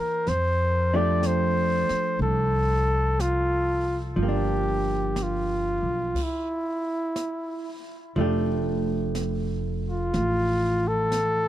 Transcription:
0.00 0.27 E3 soft
0.00 0.29 A#3 soft
0.00 0.30 C#4 soft
0.00 0.30 A#4 medium
0.27 1.87 F2 medium
0.27 0.98 C5 medium
0.27 brush sweep soft
0.27 snare soft
0.94 4.15 F3 soft
0.94 4.20 A3 soft
0.94 4.19 D4 soft
0.94 4.20 G4 soft
0.94 1.28 D5 medium
1.23 2.22 C5 medium
1.23 brush sweep soft
1.23 snare soft
1.23 hi-hat pedal medium
1.89 muted upright bass stroke soft
1.89 snare soft
2.19 4.13 C2 medium
2.19 3.22 A4 medium
2.19 brush sweep soft
3.19 4.01 F4 medium
3.19 brush sweep soft
3.19 snare soft
3.19 hi-hat pedal soft
4.16 5.79 G1 medium
4.16 6.15 F3 soft
4.16 brush sweep soft
4.23 6.18 A#3 soft
4.23 5.24 G4 medium
4.28 6.21 D4 soft
5.16 brush sweep soft
5.16 snare soft
5.16 hi-hat pedal soft
5.23 6.25 F4 medium
5.83 6.13 B1 medium
6.15 brush sweep soft
6.15 kick medium
6.15 snare soft
6.15 crash medium
6.23 7.87 E4 medium
7.16 brush sweep soft
7.16 snare soft
7.16 hi-hat pedal medium
8.15 10.10 F1 medium
8.15 11.48 F3 soft
8.15 11.48 A3 soft
8.15 11.48 D4 soft
8.15 brush sweep soft
8.21 11.48 G4 medium
9.15 brush sweep soft
9.15 snare soft
9.15 hi-hat pedal medium
9.90 10.89 F4 medium
10.14 11.48 A1 medium
10.14 brush sweep soft
10.14 snare soft
10.88 11.48 A4 medium
11.12 brush sweep soft
11.12 snare soft
11.12 hi-hat pedal soft

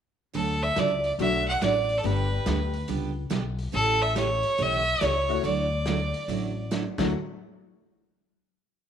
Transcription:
0.34 0.69 D2 medium
0.34 0.56 D3 medium
0.34 0.56 F#3 medium
0.34 0.57 A3 medium
0.34 0.57 D4 medium
0.34 0.57 F#4 medium
0.34 0.64 A4 medium
0.34 open hi-hat soft
0.63 0.81 E5 medium
0.76 1.13 C#2 medium
0.76 0.88 D3 medium
0.76 0.88 F#3 medium
0.76 0.88 A3 medium
0.76 0.89 D4 medium
0.76 0.89 F#4 medium
0.76 1.05 D5 medium
0.76 snare medium
0.76 closed hi-hat medium
1.04 1.12 D5 medium
1.04 open hi-hat soft
1.19 1.55 B1 medium
1.19 1.41 D3 medium
1.19 1.41 F#3 medium
1.19 1.44 F#3 medium
1.19 1.41 A3 medium
1.19 1.44 A3 medium
1.19 1.41 D4 medium
1.19 1.45 D4 medium
1.19 1.45 F#4 medium
1.19 1.42 F#4 medium
1.19 1.46 E5 loud
1.19 open hi-hat soft
1.48 1.61 F#5 loud
1.62 1.97 A1 medium
1.62 1.73 D3 medium
1.62 1.73 F#3 medium
1.62 1.73 A3 medium
1.62 1.74 D4 medium
1.62 1.73 F#4 medium
1.62 2.00 D5 loud
1.62 snare medium
1.62 closed hi-hat medium
1.89 open hi-hat soft
1.98 2.06 A4 medium
2.03 2.38 G1 medium
2.03 2.25 D3 soft
2.03 2.25 G3 medium
2.03 2.68 G3 medium
2.03 2.26 B3 medium
2.03 2.68 B3 medium
2.03 2.26 D4 medium
2.03 2.69 D4 medium
2.03 2.26 G4 medium
2.03 2.69 G4 medium
2.03 2.89 B4 medium
2.03 open hi-hat soft
2.46 2.82 D2 medium
2.46 2.58 D3 medium
2.46 2.58 G3 medium
2.46 2.58 B3 medium
2.46 2.58 D4 medium
2.46 2.58 G4 medium
2.46 snare medium
2.46 closed hi-hat medium
2.73 open hi-hat soft
2.88 3.25 C#2 medium
2.88 3.10 D3 medium
2.88 3.10 G3 medium
2.88 3.10 B3 medium
2.88 3.11 D4 medium
2.88 3.11 G4 medium
2.88 open hi-hat soft
3.30 3.67 B1 medium
3.30 3.42 D3 medium
3.30 3.42 G3 medium
3.30 3.42 B3 medium
3.30 3.43 D4 medium
3.30 3.43 G4 medium
3.30 snare medium
3.30 closed hi-hat medium
3.58 open hi-hat soft
3.72 4.42 A1 medium
3.72 3.95 C#3 medium
3.72 3.95 E3 medium
3.72 3.95 A3 medium
3.72 3.95 C#4 medium
3.72 3.95 G4 medium
3.72 4.03 A4 loud
3.72 open hi-hat soft
4.02 4.16 E5 medium
4.15 4.27 C#3 medium
4.15 4.27 E3 medium
4.15 4.27 A3 medium
4.15 4.27 C#4 medium
4.15 4.28 G4 medium
4.15 4.64 C#5 loud
4.15 snare medium
4.15 closed hi-hat medium
4.43 open hi-hat soft
4.58 4.95 B1 medium
4.58 4.80 C#3 medium
4.58 4.80 E3 medium
4.58 4.81 A3 medium
4.58 4.81 C#4 medium
4.58 4.81 G4 medium
4.58 open hi-hat soft
4.62 5.05 E5 loud
5.01 5.37 C#2 medium
5.01 5.12 C#3 medium
5.01 5.12 E3 medium
5.01 5.12 A3 medium
5.01 5.13 C#4 medium
5.01 5.13 G4 medium
5.01 5.45 C#5 loud
5.01 snare medium
5.01 closed hi-hat medium
5.28 5.42 A3 medium
5.28 5.42 D4 medium
5.28 5.42 E4 medium
5.28 5.42 F#4 medium
5.28 open hi-hat soft
5.43 6.11 D2 medium
5.43 5.65 D3 medium
5.43 5.66 F#3 medium
5.43 5.66 A3 medium
5.43 5.66 E4 medium
5.43 5.66 F#4 medium
5.43 6.68 D5 medium
5.43 open hi-hat soft
5.86 5.98 D3 medium
5.86 5.98 F#3 medium
5.86 5.98 A3 medium
5.86 5.98 E4 medium
5.86 5.99 F#4 medium
5.86 snare medium
5.86 closed hi-hat medium
6.14 open hi-hat soft
6.28 6.84 A1 medium
6.28 6.50 D3 medium
6.28 6.50 F#3 medium
6.28 6.51 A3 medium
6.28 6.51 E4 medium
6.28 6.51 F#4 medium
6.28 open hi-hat soft
6.71 6.83 D3 medium
6.71 6.83 F#3 medium
6.71 6.83 A3 medium
6.71 6.83 E4 medium
6.71 6.83 F#4 medium
6.71 snare medium
6.71 closed hi-hat medium
6.98 7.12 D2 medium
6.98 7.10 D3 medium
6.98 7.12 F#3 medium
6.98 7.11 F#3 medium
6.98 7.12 A3 medium
6.98 7.11 A3 medium
6.98 7.12 D4 medium
6.98 7.13 E4 medium
6.98 7.12 E4 medium
6.98 7.13 F#4 medium
6.98 7.12 F#4 medium
6.98 kick medium
6.98 snare medium
6.98 crash medium

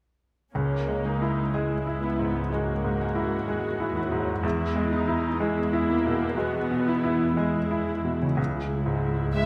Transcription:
0.53 2.48 C#2 soft
0.53 3.45 C#2 soft
0.53 4.45 C#3 soft
0.53 1.49 A#3 soft
0.53 1.00 C#4 soft
0.88 1.41 G#3 soft
1.03 3.00 G#3 soft
1.03 1.53 D#4 soft
1.22 1.74 E4 soft
1.53 2.02 G#3 soft
1.53 2.06 G#3 soft
1.53 2.51 E4 soft
1.53 3.48 G#4 soft
1.87 2.39 E4 soft
2.01 2.51 B3 soft
2.01 3.95 E4 soft
2.19 2.71 G#2 soft
2.51 3.04 G#3 soft
2.51 3.48 A#3 soft
2.51 4.48 C#4 soft
2.51 4.44 F#4 soft
2.84 3.35 G#2 soft
3.01 6.38 G#3 soft
3.15 3.67 E4 soft
3.48 4.43 D#2 soft
3.48 3.96 G#3 soft
3.48 3.99 G#3 soft
3.48 5.40 G#4 soft
3.80 4.31 E4 soft
3.95 4.44 F#3 soft
3.95 4.91 E4 soft
4.12 4.44 G#2 soft
4.43 6.34 E2 soft
4.43 8.15 E2 soft
4.43 8.35 E3 soft
4.43 5.38 G#3 soft
4.43 4.92 E4 soft
4.76 5.28 G#3 soft
4.92 5.40 D#4 soft
4.92 5.89 E4 soft
5.08 5.60 E4 soft
5.39 5.88 G#3 soft
5.39 5.93 G#3 soft
5.39 6.38 E4 soft
5.39 7.37 G#4 soft
5.73 6.25 E4 soft
5.89 6.38 A#3 soft
5.89 6.87 E4 soft
6.06 6.58 B2 soft
6.37 6.91 G#3 soft
6.37 8.25 G#3 soft
6.37 7.37 B3 soft
6.37 6.87 F#4 soft
6.71 7.24 B2 soft
6.86 7.34 E4 soft
6.86 7.88 E4 soft
7.04 7.57 E4 soft
7.35 8.17 G#3 soft
7.35 7.91 G#3 soft
7.35 8.15 E4 soft
7.35 8.34 G#4 soft
7.71 8.25 E4 soft
7.89 8.29 E4 soft
8.04 8.38 B2 soft
8.22 9.46 C#3 soft
8.26 9.46 G#3 soft
8.31 9.46 E4 soft
8.35 9.46 C#2 soft
8.35 9.46 G#3 soft
8.35 9.46 E4 soft
8.35 9.46 G#4 soft
8.86 9.46 G#2 soft
9.36 9.46 G#3 soft
9.36 9.46 E5 medium

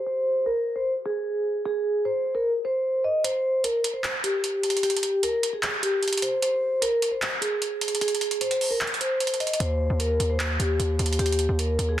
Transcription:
0.07 0.44 C5 medium
0.46 0.74 A#4 medium
0.76 0.85 C5 medium
1.06 1.62 G#4 medium
1.66 2.03 G#4 medium
2.05 2.33 C5 medium
2.35 2.44 A#4 medium
2.65 3.02 C5 medium
3.04 3.22 D#5 medium
3.24 3.62 C5 medium
3.24 closed hi-hat medium
3.64 3.92 A#4 medium
3.64 closed hi-hat medium
3.84 closed hi-hat medium
3.93 4.02 C5 medium
4.04 clap loud
4.04 closed hi-hat medium
4.24 4.80 G4 medium
4.24 closed hi-hat medium
4.44 closed hi-hat medium
4.63 closed hi-hat medium
4.63 open hi-hat medium
4.70 closed hi-hat medium
4.77 closed hi-hat medium
4.83 5.21 G4 loud
4.83 closed hi-hat medium
4.90 closed hi-hat medium
4.97 closed hi-hat medium
5.03 closed hi-hat medium
5.23 5.51 A#4 medium
5.23 closed hi-hat medium
5.43 closed hi-hat medium
5.53 5.62 G#4 medium
5.63 clap loud
5.63 closed hi-hat medium
5.83 6.00 G4 medium
5.83 closed hi-hat medium
6.03 6.20 G4 medium
6.03 closed hi-hat soft
6.08 closed hi-hat medium
6.13 closed hi-hat medium
6.17 closed hi-hat medium
6.22 6.40 C5 medium
6.22 closed hi-hat medium
6.42 6.80 C5 loud
6.42 closed hi-hat medium
6.82 7.10 A#4 medium
6.82 closed hi-hat medium
7.02 closed hi-hat medium
7.11 7.20 C5 medium
7.22 clap loud
7.22 closed hi-hat medium
7.41 7.98 G#4 medium
7.41 closed hi-hat medium
7.62 closed hi-hat medium
7.81 closed hi-hat medium
7.81 open hi-hat medium
7.88 closed hi-hat medium
7.95 closed hi-hat medium
8.01 8.39 G#4 medium
8.01 closed hi-hat medium
8.08 closed hi-hat medium
8.15 closed hi-hat medium
8.21 closed hi-hat medium
8.31 closed hi-hat medium
8.41 8.69 C5 medium
8.41 closed hi-hat medium
8.51 closed hi-hat medium
8.61 open hi-hat medium
8.71 8.79 A#4 medium
8.81 clap loud
8.81 closed hi-hat medium
8.87 closed hi-hat medium
8.94 closed hi-hat medium
9.01 9.38 C5 medium
9.01 closed hi-hat medium
9.20 closed hi-hat medium
9.27 closed hi-hat medium
9.34 closed hi-hat soft
9.40 9.58 D#5 medium
9.40 closed hi-hat soft
9.47 closed hi-hat medium
9.53 closed hi-hat medium
9.60 9.89 D#2 loud
9.60 9.98 C5 medium
9.60 closed hi-hat medium
9.90 10.19 D#2 loud
10.00 10.28 A#4 medium
10.00 closed hi-hat medium
10.20 10.58 D#2 loud
10.20 closed hi-hat medium
10.30 10.38 C5 medium
10.40 clap loud
10.40 closed hi-hat medium
10.59 10.79 D#2 loud
10.59 11.16 G4 medium
10.59 closed hi-hat medium
10.79 10.98 D#2 loud
10.79 closed hi-hat medium
10.99 11.18 D#2 loud
10.99 closed hi-hat medium
10.99 open hi-hat soft
11.06 closed hi-hat medium
11.13 closed hi-hat medium
11.19 11.48 D#2 loud
11.19 11.56 G4 loud
11.19 closed hi-hat medium
11.26 closed hi-hat medium
11.32 closed hi-hat medium
11.39 closed hi-hat medium
11.49 11.78 D#2 loud
11.59 11.87 A#4 medium
11.59 closed hi-hat medium
11.79 12.00 D#2 loud
11.79 closed hi-hat medium
11.89 11.97 G#4 medium

